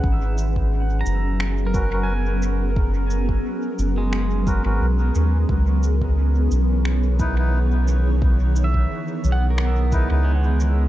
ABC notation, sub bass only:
X:1
M:4/4
L:1/16
Q:"Swing 16ths" 1/4=88
K:G#m
V:1 name="Sub bass" clef=bass
G,,,6 F,,,8- F,,,2- | F,,,4 z2 F,,,4- F,,, G,,, B,,,2 D,,2 | C,,6 B,,,8- B,,,2- | B,,,4 z2 B,,,4- B,,, C,,4- C,, |]